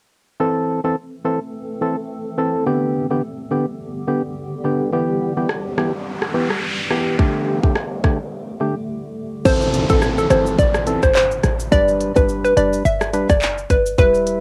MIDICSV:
0, 0, Header, 1, 8, 480
1, 0, Start_track
1, 0, Key_signature, 0, "minor"
1, 0, Tempo, 566038
1, 338, Time_signature, 4, 2, 24, 8
1, 12217, End_track
2, 0, Start_track
2, 0, Title_t, "Synth pluck"
2, 0, Program_c, 0, 84
2, 8017, Note_on_c, 0, 72, 110
2, 8195, Note_off_c, 0, 72, 0
2, 8394, Note_on_c, 0, 69, 83
2, 8471, Note_off_c, 0, 69, 0
2, 8634, Note_on_c, 0, 69, 78
2, 8712, Note_off_c, 0, 69, 0
2, 8738, Note_on_c, 0, 72, 81
2, 8838, Note_off_c, 0, 72, 0
2, 8979, Note_on_c, 0, 74, 87
2, 9078, Note_off_c, 0, 74, 0
2, 9353, Note_on_c, 0, 72, 77
2, 9431, Note_off_c, 0, 72, 0
2, 9457, Note_on_c, 0, 72, 75
2, 9810, Note_off_c, 0, 72, 0
2, 9938, Note_on_c, 0, 74, 112
2, 10116, Note_off_c, 0, 74, 0
2, 10313, Note_on_c, 0, 71, 77
2, 10391, Note_off_c, 0, 71, 0
2, 10553, Note_on_c, 0, 71, 90
2, 10631, Note_off_c, 0, 71, 0
2, 10659, Note_on_c, 0, 74, 88
2, 10758, Note_off_c, 0, 74, 0
2, 10899, Note_on_c, 0, 76, 88
2, 10998, Note_off_c, 0, 76, 0
2, 11275, Note_on_c, 0, 74, 80
2, 11352, Note_off_c, 0, 74, 0
2, 11621, Note_on_c, 0, 71, 83
2, 11720, Note_off_c, 0, 71, 0
2, 11862, Note_on_c, 0, 71, 114
2, 12038, Note_off_c, 0, 71, 0
2, 12217, End_track
3, 0, Start_track
3, 0, Title_t, "Synth stab"
3, 0, Program_c, 1, 62
3, 338, Note_on_c, 1, 52, 87
3, 340, Note_on_c, 1, 60, 80
3, 341, Note_on_c, 1, 69, 100
3, 680, Note_off_c, 1, 52, 0
3, 681, Note_off_c, 1, 60, 0
3, 682, Note_off_c, 1, 69, 0
3, 711, Note_on_c, 1, 52, 76
3, 714, Note_on_c, 1, 60, 70
3, 717, Note_on_c, 1, 69, 88
3, 809, Note_off_c, 1, 52, 0
3, 810, Note_off_c, 1, 60, 0
3, 812, Note_off_c, 1, 69, 0
3, 1056, Note_on_c, 1, 52, 79
3, 1058, Note_on_c, 1, 60, 72
3, 1061, Note_on_c, 1, 69, 82
3, 1181, Note_off_c, 1, 52, 0
3, 1182, Note_off_c, 1, 60, 0
3, 1183, Note_off_c, 1, 69, 0
3, 1537, Note_on_c, 1, 52, 75
3, 1540, Note_on_c, 1, 60, 65
3, 1542, Note_on_c, 1, 69, 83
3, 1661, Note_off_c, 1, 52, 0
3, 1663, Note_off_c, 1, 60, 0
3, 1664, Note_off_c, 1, 69, 0
3, 2016, Note_on_c, 1, 52, 73
3, 2018, Note_on_c, 1, 60, 69
3, 2021, Note_on_c, 1, 69, 83
3, 2240, Note_off_c, 1, 52, 0
3, 2241, Note_off_c, 1, 60, 0
3, 2243, Note_off_c, 1, 69, 0
3, 2258, Note_on_c, 1, 50, 86
3, 2260, Note_on_c, 1, 59, 79
3, 2263, Note_on_c, 1, 67, 100
3, 2600, Note_off_c, 1, 50, 0
3, 2602, Note_off_c, 1, 59, 0
3, 2603, Note_off_c, 1, 67, 0
3, 2632, Note_on_c, 1, 50, 77
3, 2635, Note_on_c, 1, 59, 70
3, 2638, Note_on_c, 1, 67, 85
3, 2730, Note_off_c, 1, 50, 0
3, 2731, Note_off_c, 1, 59, 0
3, 2732, Note_off_c, 1, 67, 0
3, 2975, Note_on_c, 1, 50, 81
3, 2978, Note_on_c, 1, 59, 69
3, 2980, Note_on_c, 1, 67, 85
3, 3100, Note_off_c, 1, 50, 0
3, 3102, Note_off_c, 1, 59, 0
3, 3103, Note_off_c, 1, 67, 0
3, 3455, Note_on_c, 1, 50, 73
3, 3457, Note_on_c, 1, 59, 68
3, 3460, Note_on_c, 1, 67, 82
3, 3580, Note_off_c, 1, 50, 0
3, 3581, Note_off_c, 1, 59, 0
3, 3583, Note_off_c, 1, 67, 0
3, 3935, Note_on_c, 1, 50, 79
3, 3938, Note_on_c, 1, 59, 70
3, 3941, Note_on_c, 1, 67, 82
3, 4160, Note_off_c, 1, 50, 0
3, 4161, Note_off_c, 1, 59, 0
3, 4163, Note_off_c, 1, 67, 0
3, 4176, Note_on_c, 1, 52, 89
3, 4179, Note_on_c, 1, 59, 79
3, 4182, Note_on_c, 1, 67, 95
3, 4520, Note_off_c, 1, 52, 0
3, 4521, Note_off_c, 1, 59, 0
3, 4522, Note_off_c, 1, 67, 0
3, 4551, Note_on_c, 1, 52, 73
3, 4553, Note_on_c, 1, 59, 71
3, 4556, Note_on_c, 1, 67, 83
3, 4649, Note_off_c, 1, 52, 0
3, 4650, Note_off_c, 1, 59, 0
3, 4651, Note_off_c, 1, 67, 0
3, 4896, Note_on_c, 1, 52, 77
3, 4899, Note_on_c, 1, 59, 70
3, 4901, Note_on_c, 1, 67, 89
3, 5021, Note_off_c, 1, 52, 0
3, 5022, Note_off_c, 1, 59, 0
3, 5023, Note_off_c, 1, 67, 0
3, 5376, Note_on_c, 1, 52, 77
3, 5378, Note_on_c, 1, 59, 69
3, 5381, Note_on_c, 1, 67, 81
3, 5501, Note_off_c, 1, 52, 0
3, 5502, Note_off_c, 1, 59, 0
3, 5503, Note_off_c, 1, 67, 0
3, 5855, Note_on_c, 1, 52, 76
3, 5858, Note_on_c, 1, 59, 69
3, 5860, Note_on_c, 1, 67, 86
3, 6080, Note_off_c, 1, 52, 0
3, 6081, Note_off_c, 1, 59, 0
3, 6083, Note_off_c, 1, 67, 0
3, 6095, Note_on_c, 1, 50, 90
3, 6098, Note_on_c, 1, 57, 80
3, 6100, Note_on_c, 1, 67, 96
3, 6439, Note_off_c, 1, 50, 0
3, 6440, Note_off_c, 1, 57, 0
3, 6441, Note_off_c, 1, 67, 0
3, 6471, Note_on_c, 1, 50, 77
3, 6474, Note_on_c, 1, 57, 67
3, 6476, Note_on_c, 1, 67, 88
3, 6569, Note_off_c, 1, 50, 0
3, 6570, Note_off_c, 1, 57, 0
3, 6571, Note_off_c, 1, 67, 0
3, 6815, Note_on_c, 1, 50, 78
3, 6817, Note_on_c, 1, 57, 71
3, 6819, Note_on_c, 1, 67, 89
3, 6940, Note_off_c, 1, 50, 0
3, 6941, Note_off_c, 1, 57, 0
3, 6942, Note_off_c, 1, 67, 0
3, 7294, Note_on_c, 1, 50, 78
3, 7296, Note_on_c, 1, 57, 68
3, 7300, Note_on_c, 1, 67, 85
3, 7420, Note_off_c, 1, 50, 0
3, 7421, Note_off_c, 1, 57, 0
3, 7423, Note_off_c, 1, 67, 0
3, 8015, Note_on_c, 1, 52, 88
3, 8018, Note_on_c, 1, 60, 86
3, 8019, Note_on_c, 1, 69, 101
3, 8359, Note_off_c, 1, 52, 0
3, 8360, Note_off_c, 1, 60, 0
3, 8361, Note_off_c, 1, 69, 0
3, 8389, Note_on_c, 1, 52, 78
3, 8390, Note_on_c, 1, 60, 76
3, 8394, Note_on_c, 1, 69, 88
3, 8711, Note_off_c, 1, 52, 0
3, 8712, Note_off_c, 1, 60, 0
3, 8714, Note_off_c, 1, 69, 0
3, 8734, Note_on_c, 1, 52, 80
3, 8737, Note_on_c, 1, 60, 72
3, 8739, Note_on_c, 1, 69, 91
3, 8959, Note_off_c, 1, 52, 0
3, 8961, Note_off_c, 1, 60, 0
3, 8962, Note_off_c, 1, 69, 0
3, 9214, Note_on_c, 1, 52, 79
3, 9217, Note_on_c, 1, 60, 70
3, 9220, Note_on_c, 1, 69, 89
3, 9340, Note_off_c, 1, 52, 0
3, 9341, Note_off_c, 1, 60, 0
3, 9343, Note_off_c, 1, 69, 0
3, 9934, Note_on_c, 1, 55, 93
3, 9937, Note_on_c, 1, 62, 82
3, 9939, Note_on_c, 1, 71, 100
3, 10279, Note_off_c, 1, 55, 0
3, 10280, Note_off_c, 1, 62, 0
3, 10281, Note_off_c, 1, 71, 0
3, 10308, Note_on_c, 1, 55, 82
3, 10311, Note_on_c, 1, 62, 73
3, 10314, Note_on_c, 1, 71, 92
3, 10631, Note_off_c, 1, 55, 0
3, 10632, Note_off_c, 1, 62, 0
3, 10634, Note_off_c, 1, 71, 0
3, 10654, Note_on_c, 1, 55, 78
3, 10657, Note_on_c, 1, 62, 72
3, 10659, Note_on_c, 1, 71, 90
3, 10879, Note_off_c, 1, 55, 0
3, 10881, Note_off_c, 1, 62, 0
3, 10882, Note_off_c, 1, 71, 0
3, 11135, Note_on_c, 1, 55, 80
3, 11138, Note_on_c, 1, 62, 71
3, 11141, Note_on_c, 1, 71, 85
3, 11260, Note_off_c, 1, 55, 0
3, 11262, Note_off_c, 1, 62, 0
3, 11263, Note_off_c, 1, 71, 0
3, 11856, Note_on_c, 1, 55, 92
3, 11859, Note_on_c, 1, 64, 84
3, 11861, Note_on_c, 1, 71, 98
3, 12199, Note_off_c, 1, 55, 0
3, 12201, Note_off_c, 1, 64, 0
3, 12202, Note_off_c, 1, 71, 0
3, 12217, End_track
4, 0, Start_track
4, 0, Title_t, "Ambient pad"
4, 0, Program_c, 2, 92
4, 337, Note_on_c, 2, 57, 71
4, 337, Note_on_c, 2, 60, 70
4, 337, Note_on_c, 2, 69, 85
4, 338, Note_on_c, 2, 52, 80
4, 2239, Note_off_c, 2, 52, 0
4, 2239, Note_off_c, 2, 57, 0
4, 2239, Note_off_c, 2, 60, 0
4, 2239, Note_off_c, 2, 69, 0
4, 2258, Note_on_c, 2, 50, 79
4, 2259, Note_on_c, 2, 55, 70
4, 2259, Note_on_c, 2, 59, 69
4, 2259, Note_on_c, 2, 67, 89
4, 4159, Note_off_c, 2, 50, 0
4, 4180, Note_on_c, 2, 52, 79
4, 6065, Note_off_c, 2, 59, 0
4, 6080, Note_off_c, 2, 52, 0
4, 6097, Note_on_c, 2, 50, 81
4, 6099, Note_on_c, 2, 57, 74
4, 7985, Note_off_c, 2, 55, 0
4, 7985, Note_off_c, 2, 67, 0
4, 7999, Note_off_c, 2, 50, 0
4, 8000, Note_off_c, 2, 57, 0
4, 12217, End_track
5, 0, Start_track
5, 0, Title_t, "808-style bass"
5, 0, Program_c, 3, 38
5, 8017, Note_on_c, 3, 33, 120
5, 8353, Note_off_c, 3, 33, 0
5, 8395, Note_on_c, 3, 33, 102
5, 8703, Note_off_c, 3, 33, 0
5, 8739, Note_on_c, 3, 31, 95
5, 8954, Note_off_c, 3, 31, 0
5, 8977, Note_on_c, 3, 33, 108
5, 9313, Note_off_c, 3, 33, 0
5, 9355, Note_on_c, 3, 31, 91
5, 9663, Note_off_c, 3, 31, 0
5, 9699, Note_on_c, 3, 33, 100
5, 9914, Note_off_c, 3, 33, 0
5, 9939, Note_on_c, 3, 31, 117
5, 10274, Note_off_c, 3, 31, 0
5, 10316, Note_on_c, 3, 31, 101
5, 10624, Note_off_c, 3, 31, 0
5, 10657, Note_on_c, 3, 30, 99
5, 10872, Note_off_c, 3, 30, 0
5, 10899, Note_on_c, 3, 31, 105
5, 11234, Note_off_c, 3, 31, 0
5, 11275, Note_on_c, 3, 30, 92
5, 11583, Note_off_c, 3, 30, 0
5, 11619, Note_on_c, 3, 31, 95
5, 11833, Note_off_c, 3, 31, 0
5, 11858, Note_on_c, 3, 28, 113
5, 12194, Note_off_c, 3, 28, 0
5, 12217, End_track
6, 0, Start_track
6, 0, Title_t, "Downlifter"
6, 0, Program_c, 4, 103
6, 8018, Note_on_c, 4, 60, 90
6, 11858, Note_off_c, 4, 60, 0
6, 12217, End_track
7, 0, Start_track
7, 0, Title_t, "Noise sweep"
7, 0, Program_c, 5, 103
7, 4178, Note_on_c, 5, 60, 82
7, 7058, Note_off_c, 5, 60, 0
7, 12217, End_track
8, 0, Start_track
8, 0, Title_t, "Drums"
8, 4657, Note_on_c, 9, 37, 89
8, 4742, Note_off_c, 9, 37, 0
8, 4900, Note_on_c, 9, 37, 90
8, 4985, Note_off_c, 9, 37, 0
8, 5274, Note_on_c, 9, 37, 95
8, 5358, Note_off_c, 9, 37, 0
8, 5515, Note_on_c, 9, 37, 87
8, 5600, Note_off_c, 9, 37, 0
8, 5856, Note_on_c, 9, 37, 91
8, 5941, Note_off_c, 9, 37, 0
8, 6098, Note_on_c, 9, 36, 97
8, 6183, Note_off_c, 9, 36, 0
8, 6474, Note_on_c, 9, 36, 90
8, 6559, Note_off_c, 9, 36, 0
8, 6576, Note_on_c, 9, 37, 96
8, 6661, Note_off_c, 9, 37, 0
8, 6818, Note_on_c, 9, 36, 90
8, 6820, Note_on_c, 9, 37, 92
8, 6902, Note_off_c, 9, 36, 0
8, 6904, Note_off_c, 9, 37, 0
8, 8017, Note_on_c, 9, 82, 75
8, 8018, Note_on_c, 9, 36, 110
8, 8018, Note_on_c, 9, 49, 98
8, 8102, Note_off_c, 9, 82, 0
8, 8103, Note_off_c, 9, 36, 0
8, 8103, Note_off_c, 9, 49, 0
8, 8154, Note_on_c, 9, 82, 55
8, 8238, Note_off_c, 9, 82, 0
8, 8259, Note_on_c, 9, 42, 71
8, 8259, Note_on_c, 9, 82, 52
8, 8344, Note_off_c, 9, 42, 0
8, 8344, Note_off_c, 9, 82, 0
8, 8391, Note_on_c, 9, 82, 77
8, 8395, Note_on_c, 9, 36, 93
8, 8475, Note_off_c, 9, 82, 0
8, 8479, Note_off_c, 9, 36, 0
8, 8496, Note_on_c, 9, 82, 67
8, 8497, Note_on_c, 9, 37, 100
8, 8581, Note_off_c, 9, 82, 0
8, 8582, Note_off_c, 9, 37, 0
8, 8634, Note_on_c, 9, 82, 57
8, 8719, Note_off_c, 9, 82, 0
8, 8738, Note_on_c, 9, 42, 76
8, 8738, Note_on_c, 9, 82, 53
8, 8739, Note_on_c, 9, 37, 103
8, 8823, Note_off_c, 9, 42, 0
8, 8823, Note_off_c, 9, 82, 0
8, 8824, Note_off_c, 9, 37, 0
8, 8874, Note_on_c, 9, 82, 80
8, 8959, Note_off_c, 9, 82, 0
8, 8977, Note_on_c, 9, 36, 88
8, 8979, Note_on_c, 9, 82, 77
8, 9062, Note_off_c, 9, 36, 0
8, 9063, Note_off_c, 9, 82, 0
8, 9111, Note_on_c, 9, 37, 103
8, 9111, Note_on_c, 9, 82, 48
8, 9196, Note_off_c, 9, 37, 0
8, 9196, Note_off_c, 9, 82, 0
8, 9216, Note_on_c, 9, 42, 76
8, 9216, Note_on_c, 9, 82, 57
8, 9301, Note_off_c, 9, 42, 0
8, 9301, Note_off_c, 9, 82, 0
8, 9351, Note_on_c, 9, 82, 75
8, 9353, Note_on_c, 9, 37, 94
8, 9355, Note_on_c, 9, 36, 99
8, 9436, Note_off_c, 9, 82, 0
8, 9437, Note_off_c, 9, 37, 0
8, 9440, Note_off_c, 9, 36, 0
8, 9458, Note_on_c, 9, 39, 100
8, 9458, Note_on_c, 9, 82, 72
8, 9542, Note_off_c, 9, 39, 0
8, 9543, Note_off_c, 9, 82, 0
8, 9593, Note_on_c, 9, 82, 55
8, 9678, Note_off_c, 9, 82, 0
8, 9696, Note_on_c, 9, 37, 95
8, 9697, Note_on_c, 9, 42, 75
8, 9697, Note_on_c, 9, 82, 53
8, 9781, Note_off_c, 9, 37, 0
8, 9782, Note_off_c, 9, 42, 0
8, 9782, Note_off_c, 9, 82, 0
8, 9834, Note_on_c, 9, 82, 90
8, 9918, Note_off_c, 9, 82, 0
8, 9939, Note_on_c, 9, 36, 106
8, 9939, Note_on_c, 9, 82, 76
8, 10024, Note_off_c, 9, 36, 0
8, 10024, Note_off_c, 9, 82, 0
8, 10076, Note_on_c, 9, 82, 57
8, 10161, Note_off_c, 9, 82, 0
8, 10180, Note_on_c, 9, 42, 71
8, 10180, Note_on_c, 9, 82, 52
8, 10265, Note_off_c, 9, 42, 0
8, 10265, Note_off_c, 9, 82, 0
8, 10312, Note_on_c, 9, 82, 77
8, 10316, Note_on_c, 9, 36, 97
8, 10397, Note_off_c, 9, 82, 0
8, 10401, Note_off_c, 9, 36, 0
8, 10420, Note_on_c, 9, 82, 70
8, 10504, Note_off_c, 9, 82, 0
8, 10556, Note_on_c, 9, 82, 54
8, 10640, Note_off_c, 9, 82, 0
8, 10660, Note_on_c, 9, 42, 77
8, 10660, Note_on_c, 9, 82, 53
8, 10745, Note_off_c, 9, 42, 0
8, 10745, Note_off_c, 9, 82, 0
8, 10795, Note_on_c, 9, 82, 79
8, 10880, Note_off_c, 9, 82, 0
8, 10900, Note_on_c, 9, 82, 77
8, 10985, Note_off_c, 9, 82, 0
8, 11033, Note_on_c, 9, 37, 101
8, 11033, Note_on_c, 9, 82, 49
8, 11118, Note_off_c, 9, 37, 0
8, 11118, Note_off_c, 9, 82, 0
8, 11139, Note_on_c, 9, 42, 80
8, 11139, Note_on_c, 9, 82, 58
8, 11224, Note_off_c, 9, 42, 0
8, 11224, Note_off_c, 9, 82, 0
8, 11274, Note_on_c, 9, 82, 78
8, 11275, Note_on_c, 9, 37, 88
8, 11276, Note_on_c, 9, 36, 105
8, 11359, Note_off_c, 9, 82, 0
8, 11360, Note_off_c, 9, 36, 0
8, 11360, Note_off_c, 9, 37, 0
8, 11379, Note_on_c, 9, 39, 103
8, 11379, Note_on_c, 9, 82, 72
8, 11464, Note_off_c, 9, 39, 0
8, 11464, Note_off_c, 9, 82, 0
8, 11516, Note_on_c, 9, 82, 53
8, 11601, Note_off_c, 9, 82, 0
8, 11618, Note_on_c, 9, 42, 78
8, 11618, Note_on_c, 9, 82, 54
8, 11619, Note_on_c, 9, 36, 82
8, 11703, Note_off_c, 9, 36, 0
8, 11703, Note_off_c, 9, 42, 0
8, 11703, Note_off_c, 9, 82, 0
8, 11754, Note_on_c, 9, 82, 91
8, 11839, Note_off_c, 9, 82, 0
8, 11858, Note_on_c, 9, 82, 73
8, 11859, Note_on_c, 9, 36, 109
8, 11943, Note_off_c, 9, 36, 0
8, 11943, Note_off_c, 9, 82, 0
8, 11995, Note_on_c, 9, 82, 56
8, 12080, Note_off_c, 9, 82, 0
8, 12099, Note_on_c, 9, 42, 73
8, 12099, Note_on_c, 9, 82, 53
8, 12184, Note_off_c, 9, 42, 0
8, 12184, Note_off_c, 9, 82, 0
8, 12217, End_track
0, 0, End_of_file